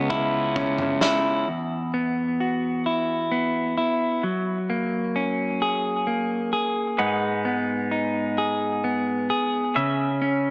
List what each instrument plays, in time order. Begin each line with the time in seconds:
Already playing: fingered electric bass C#2, clean electric guitar C#3 B3 C#4, pedal steel guitar B3 G#4 C#5 E5
0.10 clean electric guitar E4, kick
0.56 clean electric guitar C#4, kick
0.78 mid tom
1.01 clean electric guitar E4, snare
1.48 clean electric guitar E2
1.94 clean electric guitar B3
2.40 clean electric guitar F#4
2.86 clean electric guitar E4
3.32 clean electric guitar B3
3.78 clean electric guitar E4
4.23 clean electric guitar F#3
4.70 clean electric guitar A#3
5.16 clean electric guitar C#4
5.62 clean electric guitar G#4
6.07 clean electric guitar A#3
6.53 clean electric guitar G#4
6.98 clean electric guitar G#2, pedal steel guitar G#3 D#4 B4 F#5
7.45 clean electric guitar B3
7.91 clean electric guitar D#4
8.38 clean electric guitar G#4
8.84 clean electric guitar B3
9.30 clean electric guitar G#4
9.75 pedal steel guitar C#3 C#4 E5, clean electric guitar C#3
10.22 clean electric guitar C#4